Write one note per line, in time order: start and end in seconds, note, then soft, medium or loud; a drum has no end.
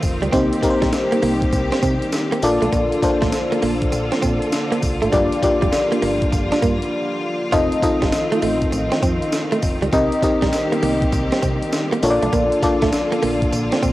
0.00 0.19 F1 medium
0.00 2.38 D#3 medium
0.00 0.30 F3 medium
0.00 0.30 A3 medium
0.00 0.34 A3 medium
0.00 0.33 C4 medium
0.00 2.38 C4 medium
0.00 0.33 D#4 medium
0.00 0.30 F4 medium
0.00 0.35 F4 medium
0.00 0.34 C5 loud
0.00 muted clean electric guitar stroke soft
0.00 kick loud
0.00 open hi-hat medium
0.00 tambourine medium
0.22 0.31 C#2 medium
0.22 0.28 G3 medium
0.22 closed hi-hat medium
0.32 0.48 C2 loud
0.32 2.40 G3 medium
0.32 2.40 A#3 medium
0.32 0.59 A#3 medium
0.32 0.43 C4 medium
0.32 0.59 C4 medium
0.32 0.59 D#4 medium
0.32 2.40 G4 medium
0.32 0.60 G4 medium
0.32 0.60 C5 loud
0.32 kick loud
0.32 closed hi-hat medium
0.32 tambourine medium
0.53 closed hi-hat medium
0.63 1.66 A#3 medium
0.63 1.67 C4 medium
0.63 1.67 D#4 medium
0.63 1.67 G4 medium
0.63 0.72 A#4 medium
0.63 muted clean electric guitar stroke soft
0.63 kick loud
0.63 closed hi-hat medium
0.63 tambourine medium
0.70 1.70 C5 loud
0.82 0.91 A#1 medium
0.82 0.88 G3 medium
0.82 kick medium
0.82 snare medium
0.82 closed hi-hat medium
0.93 muted clean electric guitar stroke soft
0.93 snare loud
0.93 closed hi-hat medium
0.93 tambourine medium
1.12 1.18 A#3 medium
1.12 closed hi-hat medium
1.23 1.47 C2 loud
1.23 1.33 A#3 medium
1.23 open hi-hat medium
1.42 kick loud
1.42 closed hi-hat medium
1.53 1.68 C2 loud
1.53 muted clean electric guitar stroke soft
1.53 kick loud
1.53 closed hi-hat medium
1.53 tambourine medium
1.72 1.78 C4 medium
1.72 snare medium
1.72 closed hi-hat medium
1.83 1.98 C3 loud
1.83 1.94 C4 medium
1.83 kick loud
1.83 closed hi-hat medium
1.83 tambourine medium
2.02 closed hi-hat medium
2.12 snare loud
2.12 closed hi-hat medium
2.12 tambourine medium
2.32 2.38 A#3 medium
2.32 closed hi-hat medium
2.42 2.58 A#1 medium
2.42 7.49 D3 medium
2.42 9.88 F3 medium
2.42 5.10 A#3 medium
2.42 2.96 A#3 loud
2.42 2.96 D4 medium
2.42 9.89 F4 medium
2.42 2.96 F4 medium
2.42 5.10 A4 medium
2.42 2.96 A4 medium
2.42 2.97 D5 loud
2.42 muted clean electric guitar stroke soft
2.42 open hi-hat medium
2.42 tambourine medium
2.62 2.71 B1 loud
2.62 2.68 A3 medium
2.62 closed hi-hat medium
2.73 2.88 A#1 loud
2.73 2.83 A#3 medium
2.73 kick loud
2.73 closed hi-hat medium
2.73 tambourine medium
2.92 closed hi-hat medium
3.03 4.06 A#3 medium
3.03 4.07 D4 medium
3.03 4.07 F4 medium
3.03 4.07 A4 medium
3.03 4.07 C5 loud
3.03 muted clean electric guitar stroke soft
3.03 kick loud
3.03 closed hi-hat medium
3.03 tambourine medium
3.22 3.31 A1 medium
3.22 3.28 A3 medium
3.22 kick medium
3.22 snare medium
3.22 closed hi-hat medium
3.32 muted clean electric guitar stroke soft
3.32 snare loud
3.32 closed hi-hat medium
3.32 tambourine medium
3.52 3.58 A#3 medium
3.52 closed hi-hat medium
3.62 3.87 A#1 medium
3.62 3.73 A#3 medium
3.62 open hi-hat medium
3.82 kick loud
3.82 closed hi-hat medium
3.92 4.09 A#1 loud
3.92 muted clean electric guitar stroke soft
3.92 closed hi-hat medium
3.92 tambourine medium
4.12 4.18 C4 medium
4.12 snare medium
4.12 closed hi-hat medium
4.22 4.38 A#2 medium
4.22 4.33 C4 medium
4.22 kick loud
4.22 closed hi-hat medium
4.22 tambourine medium
4.42 closed hi-hat soft
4.52 snare loud
4.52 closed hi-hat medium
4.52 tambourine medium
4.72 4.78 A#3 medium
4.72 closed hi-hat medium
4.82 4.99 C2 medium
4.82 muted clean electric guitar stroke medium
4.82 kick medium
4.82 open hi-hat medium
4.82 tambourine medium
5.02 5.11 G#1 loud
5.02 5.08 A3 medium
5.02 closed hi-hat medium
5.12 5.28 G1 loud
5.12 5.23 G3 medium
5.12 7.50 G3 medium
5.12 5.39 A#3 medium
5.12 7.50 A#3 medium
5.12 5.39 D4 medium
5.12 5.39 F4 medium
5.12 5.40 G4 medium
5.12 5.40 D5 medium
5.12 kick loud
5.12 closed hi-hat medium
5.12 tambourine medium
5.32 closed hi-hat medium
5.42 6.46 A#3 medium
5.42 6.47 D4 medium
5.42 6.47 F4 medium
5.42 6.47 G4 medium
5.42 6.47 D5 loud
5.42 muted clean electric guitar stroke soft
5.42 kick loud
5.42 closed hi-hat medium
5.42 tambourine medium
5.62 5.71 F1 medium
5.62 5.68 G3 medium
5.62 kick medium
5.62 closed hi-hat medium
5.72 muted clean electric guitar stroke soft
5.72 snare loud
5.72 closed hi-hat medium
5.72 tambourine medium
5.92 5.98 A#3 medium
5.92 closed hi-hat medium
6.02 6.27 G1 loud
6.02 6.13 A#3 medium
6.02 open hi-hat medium
6.22 kick loud
6.22 closed hi-hat medium
6.32 6.48 G1 loud
6.32 muted clean electric guitar stroke soft
6.32 kick loud
6.32 closed hi-hat medium
6.32 tambourine medium
6.52 6.58 D4 medium
6.52 snare medium
6.52 closed hi-hat medium
6.62 6.78 G2 loud
6.62 6.73 A#3 medium
6.62 kick loud
6.62 closed hi-hat medium
6.62 tambourine medium
6.82 closed hi-hat medium
7.52 7.68 F1 loud
7.52 11.98 D#3 medium
7.52 9.90 A3 medium
7.52 7.79 C4 medium
7.52 9.90 C4 medium
7.52 7.79 D#4 medium
7.52 7.63 F4 medium
7.52 7.79 F4 medium
7.52 7.79 A4 medium
7.52 7.79 D#5 loud
7.52 kick loud
7.52 closed hi-hat medium
7.52 tambourine medium
7.72 closed hi-hat medium
7.82 8.86 C4 medium
7.82 8.86 D#4 medium
7.82 8.87 F4 medium
7.82 8.87 A4 medium
7.82 8.87 D#5 loud
7.82 muted clean electric guitar stroke soft
7.82 kick loud
7.82 closed hi-hat medium
7.82 tambourine medium
8.02 8.11 G1 medium
8.02 8.08 G3 medium
8.02 kick medium
8.02 snare medium
8.02 closed hi-hat medium
8.12 muted clean electric guitar stroke soft
8.12 snare loud
8.12 closed hi-hat medium
8.12 tambourine medium
8.32 8.38 A3 medium
8.32 closed hi-hat medium
8.42 8.67 A1 loud
8.42 8.53 A3 medium
8.42 open hi-hat medium
8.62 kick loud
8.62 closed hi-hat medium
8.72 8.88 A1 medium
8.72 muted clean electric guitar stroke soft
8.72 closed hi-hat medium
8.72 tambourine medium
8.92 8.98 C4 medium
8.92 snare medium
8.92 closed hi-hat medium
9.03 9.18 F2 loud
9.03 9.13 C4 medium
9.03 kick loud
9.03 closed hi-hat medium
9.03 tambourine medium
9.22 closed hi-hat medium
9.32 snare loud
9.32 closed hi-hat medium
9.32 tambourine medium
9.52 9.58 A3 medium
9.52 closed hi-hat medium
9.62 9.79 F1 medium
9.62 muted clean electric guitar stroke soft
9.62 kick medium
9.62 open hi-hat medium
9.62 tambourine medium
9.82 9.91 C#2 medium
9.82 9.88 G3 medium
9.82 closed hi-hat soft
9.93 10.08 C2 loud
9.93 12.01 G3 medium
9.93 12.00 A#3 medium
9.93 10.19 C4 medium
9.93 10.04 C4 medium
9.93 12.01 C4 medium
9.93 10.19 D#4 medium
9.93 12.01 G4 medium
9.93 10.19 G4 medium
9.93 10.20 A#4 medium
9.93 10.20 D#5 loud
9.93 kick loud
9.93 closed hi-hat medium
9.93 tambourine medium
10.12 closed hi-hat medium
10.23 11.27 C4 medium
10.23 11.27 D#4 medium
10.23 11.27 G4 medium
10.23 11.27 A#4 medium
10.23 11.27 D#5 medium
10.23 muted clean electric guitar stroke soft
10.23 kick loud
10.23 closed hi-hat medium
10.23 tambourine medium
10.42 10.51 A#1 medium
10.42 10.48 G3 medium
10.42 kick medium
10.42 snare medium
10.42 closed hi-hat medium
10.53 muted clean electric guitar stroke soft
10.53 snare loud
10.53 closed hi-hat medium
10.53 tambourine medium
10.72 10.78 A#3 medium
10.72 closed hi-hat medium
10.83 11.07 C2 medium
10.83 10.94 A#3 medium
10.83 open hi-hat medium
11.02 kick loud
11.02 closed hi-hat medium
11.12 11.28 C2 medium
11.12 muted clean electric guitar stroke soft
11.12 kick loud
11.12 closed hi-hat medium
11.12 tambourine medium
11.32 11.38 C4 medium
11.32 snare medium
11.32 closed hi-hat medium
11.42 11.58 C3 loud
11.42 11.53 C4 medium
11.42 kick loud
11.42 closed hi-hat medium
11.42 tambourine medium
11.62 closed hi-hat medium
11.72 snare loud
11.72 closed hi-hat medium
11.72 tambourine medium
11.92 11.98 A#3 medium
11.92 closed hi-hat medium
12.02 12.19 A#1 loud
12.02 13.93 D3 medium
12.02 13.93 F3 medium
12.02 13.93 A#3 medium
12.02 12.56 A#3 medium
12.02 12.56 D4 medium
12.02 13.93 F4 medium
12.02 12.56 F4 medium
12.02 13.93 A4 medium
12.02 12.56 A4 medium
12.02 12.12 C#5 medium
12.02 muted clean electric guitar stroke soft
12.02 open hi-hat medium
12.02 tambourine medium
12.10 12.60 D5 loud
12.22 12.31 B1 loud
12.22 12.28 A3 medium
12.22 closed hi-hat medium
12.33 12.48 A#1 loud
12.33 12.44 A#3 medium
12.33 kick loud
12.33 closed hi-hat medium
12.33 tambourine medium
12.52 closed hi-hat medium
12.63 13.66 A#3 medium
12.63 13.67 D4 medium
12.63 13.67 F4 medium
12.63 13.67 A4 medium
12.63 13.67 D5 loud
12.63 muted clean electric guitar stroke soft
12.63 kick medium
12.63 closed hi-hat medium
12.63 tambourine medium
12.82 12.91 A1 medium
12.82 12.88 A3 medium
12.82 kick medium
12.82 snare medium
12.82 closed hi-hat medium
12.93 muted clean electric guitar stroke soft
12.93 snare loud
12.93 closed hi-hat medium
12.93 tambourine medium
13.12 13.18 A#3 medium
13.12 closed hi-hat medium
13.23 13.47 A#1 medium
13.23 13.33 A#3 medium
13.23 open hi-hat medium
13.42 kick loud
13.42 closed hi-hat medium
13.53 13.68 A#1 loud
13.53 muted clean electric guitar stroke soft
13.53 closed hi-hat medium
13.53 tambourine medium
13.72 13.78 C4 medium
13.72 snare medium
13.72 closed hi-hat medium
13.83 13.93 A#2 medium
13.83 13.93 C4 medium
13.83 kick loud
13.83 closed hi-hat medium
13.83 tambourine medium